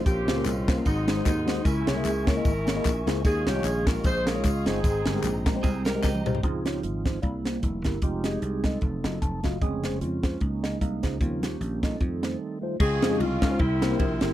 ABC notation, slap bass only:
X:1
M:4/4
L:1/8
Q:"Swing" 1/4=151
K:Dblyd
V:1 name="Slap bass" clef=bass
B,,, D,, C,,2 A,,,2 E,,2 | D,, C,, D,,2 A,,,2 B,,, D,, | E,, C,, B,,,2 B,,,2 D,, G,,, | A,,, G,,, B,,,2 C,,2 D,, C,, |
D,,2 A,,,2 C,,2 F,,, G,,, | F,,,2 C,,2 F,,, _G,,, F,,, G,,, | F,,,2 F,,2 D,,2 C,, D,, | E,,2 B,,,2 F,,2 z2 |
D,, F,, C,, D,, C,,2 B,,, G,,, |]